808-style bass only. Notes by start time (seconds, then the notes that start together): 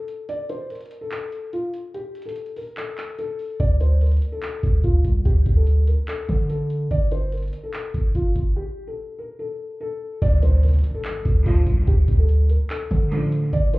3.60 D2
4.63 D2
4.84 D2
5.05 C2
5.25 D2
5.46 D2
6.29 D3
6.91 G1
7.94 G1
8.15 G1
8.36 G1
10.22 D2
11.25 D2
11.46 D2
11.67 C2
11.87 D2
12.08 D2
12.91 D3
13.53 G1